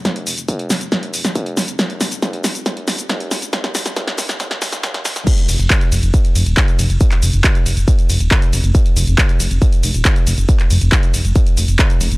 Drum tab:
CC |----------------|----------------|----------------|x---------------|
RD |----------------|----------------|----------------|--x---x---x---x-|
HH |xxoxxxoxxxoxxxox|xxoxxxoxxxoxxxox|xxoxxxoxxxoxxxox|xxoxxxoxxxoxxxox|
SH |x-xxx-xxx-xxx-xx|x-xxx-xxx-xxx-xx|x-xxx-xxx-xxx-xx|xxxxxxxxxxxxxxxx|
CP |----------------|----------------|----------------|----x-------x---|
SD |o-----o-o--o--o-|o-o-o-o-o-o-o-o-|oooooooooooooooo|----------------|
BD |o---o---o---o---|o---o---o---o---|o---o---o---o---|o---o---o---o---|

CC |----------------|----------------|----------------|
RD |--x---x---x---x-|--x---x---x---x-|--x---x---x---x-|
HH |xxoxxxoxxxoxxxox|xxoxxxoxxxoxxxox|xxoxxxoxxxoxxxox|
SH |xxxxxxxxxxxxxxxx|xxxxxxxxxxxxxxxx|xxxxxxxxxxxxxxxx|
CP |-x--x-------x---|----x-------x---|-x--x-------x---|
SD |----------------|----------------|----------------|
BD |o---o---o---o---|o---o---o---o---|o---o---o---o---|